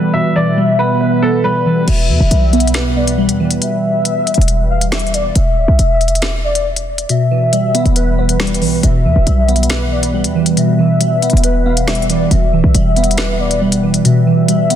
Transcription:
Already playing: B2 E3 G3 B3 B4
0.14 B2 E5
0.36 E3 D5
0.57 G3
0.79 B3 B4
1.01 B4
1.23 B3 A4 B4
1.44 G3 B4
1.66 E3
1.88 E1 B2 E5, closed hi-hat, crash
2.10 E2 E3
2.20 E1
2.31 B1 G3, closed hi-hat
2.53 B3, closed hi-hat
2.60 closed hi-hat
2.67 closed hi-hat
2.74 B4, finger snap, snare, closed hi-hat
2.96 B3 D5
3.08 closed hi-hat
3.18 G3
3.29 E2, closed hi-hat
3.40 E3
3.51 closed hi-hat
3.62 E5, closed hi-hat
4.05 closed hi-hat
4.27 closed hi-hat
4.34 E1, closed hi-hat
4.42 closed hi-hat
4.48 closed hi-hat
4.70 F5
4.81 closed hi-hat
4.92 E5, finger snap, snare, closed hi-hat
4.99 closed hi-hat
5.07 closed hi-hat
5.14 D5, closed hi-hat
5.35 E1 E5, closed hi-hat
5.57 D1
5.68 B1
5.79 E1, closed hi-hat
6.01 closed hi-hat
6.08 closed hi-hat
6.15 closed hi-hat
6.22 finger snap, snare, closed hi-hat
6.44 D5
6.55 closed hi-hat
6.76 closed hi-hat
6.98 closed hi-hat
7.09 B2 E5, closed hi-hat
7.31 E3
7.53 G3, closed hi-hat
7.75 B3, closed hi-hat
7.86 E1, closed hi-hat
7.96 B4, closed hi-hat
8.18 B3 B4
8.29 closed hi-hat
8.40 G3, finger snap, snare, closed hi-hat
8.47 closed hi-hat
8.54 closed hi-hat
8.62 B1 E3, open hi-hat
8.83 E1 B2 E5, closed hi-hat
9.05 E2 E3
9.16 E1
9.27 B1 G3, closed hi-hat
9.49 B3, closed hi-hat
9.56 closed hi-hat
9.63 closed hi-hat
9.70 B4, finger snap, snare, closed hi-hat
9.92 B3 D5
10.03 closed hi-hat
10.14 G3
10.24 E2, closed hi-hat
10.35 E3
10.46 closed hi-hat
10.57 B2 E5, closed hi-hat
10.79 E3
11.01 G3, closed hi-hat
11.22 B3, closed hi-hat
11.30 E1, closed hi-hat
11.37 closed hi-hat
11.44 B4, closed hi-hat
11.66 B3 F5
11.77 closed hi-hat
11.88 G3 E5, finger snap, snare, closed hi-hat
11.95 closed hi-hat
12.02 closed hi-hat
12.09 E3 D5, closed hi-hat
12.31 E1 B2 E5, closed hi-hat
12.53 D1 E3
12.64 B1
12.75 E1 G3, closed hi-hat
12.96 B3, closed hi-hat
13.04 closed hi-hat
13.11 closed hi-hat
13.18 B4, finger snap, snare, closed hi-hat
13.40 B3 D5
13.51 closed hi-hat
13.62 G3
13.72 closed hi-hat
13.83 E3
13.94 closed hi-hat
14.05 B2 E5, closed hi-hat
14.27 E3
14.48 G3, closed hi-hat
14.70 B3, closed hi-hat

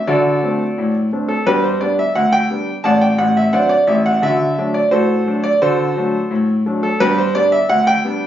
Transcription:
0.07 D3 F#4 A4 D5
0.43 A3 C4 D4
0.78 A2
1.13 A3 C4 D4
1.28 A4
1.46 G2 B3 D4 G4 B4
1.64 C5
1.81 G3 B3 D4 D5
1.99 E5
2.15 D2 F#5
2.33 G5
2.50 G3 B3 D4
2.84 A1 A2 D5 F#5 A5
3.02 G5
3.18 A1 A2 F#5
3.37 E5
3.52 F#3 C4 D4 C5 D5 F#5
3.69 D5
3.87 A1 A2 E5
4.06 F#5
4.22 D3 F#4 E5
4.58 F#3 A3 D4
4.74 D5
4.91 A2 F#4 A4 C5
5.27 F#3 A3 D4
5.44 D5
5.62 D3 F#4 A4 C5
5.96 F#3 A3 D4
6.31 A2
6.66 F#3 A3 D4
6.83 A4
7.00 G2 B3 D4 G4 B4
7.18 C5
7.35 G3 B3 D4 D5
7.52 E5
7.69 D2 F#5
7.87 G5
8.04 G3 B3 D4

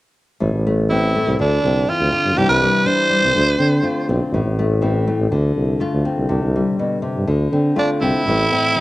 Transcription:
0.40 A1 A2
0.53 A1
0.67 A3
0.90 E3 C4 E4
1.15 A3
1.27 C2
1.39 D2 D3 D4
1.63 C2 C4
1.89 E3 F4
2.00 D2
2.12 D3
2.25 G2
2.36 C2 C3 E3 G3 D4 E4 G4
2.48 C2 B4
2.62 G3
2.85 E3 D4 C5
3.10 G3
3.23 C2
3.35 D2 D3
3.58 D3 C4
3.82 A3 F4
4.08 B1 C4
4.32 A1 A2
4.45 A1
4.59 A3
4.82 E3 C4
5.07 A3
5.19 A1
5.30 D2 D3
5.56 C2
5.80 A3 F4
5.93 D2
6.05 C4
6.18 C2
6.29 C2 C3
6.43 C2
6.56 G3
6.79 B2
7.02 C3
7.16 G2
7.27 D2 D3
7.52 D3 C4
7.76 A3 D4 F4
8.01 C2 C4 E4
8.25 A1 A2 E3 A3 C4
8.51 C4
8.75 G1 E3

